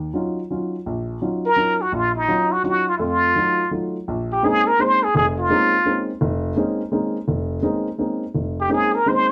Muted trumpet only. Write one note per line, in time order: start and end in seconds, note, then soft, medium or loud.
1.46 1.83 A#4 medium
1.81 1.94 F#4 medium
1.94 2.18 F4 medium
2.16 2.54 D#4 medium
2.52 2.64 F#4 medium
2.65 2.91 F#4 medium
2.89 2.96 F4 medium
2.97 3.03 E4 medium
3.01 3.72 F4 medium
4.32 4.47 G4 medium
4.45 4.69 G#4 medium
4.67 4.83 A#4 medium
4.81 5.05 C5 medium
5.04 5.15 G#4 medium
5.17 5.26 G#4 medium
5.39 6.05 F4 medium
8.61 8.71 G4 medium
8.73 8.97 G#4 medium
8.95 9.10 A#4 medium
9.08 9.32 C5 medium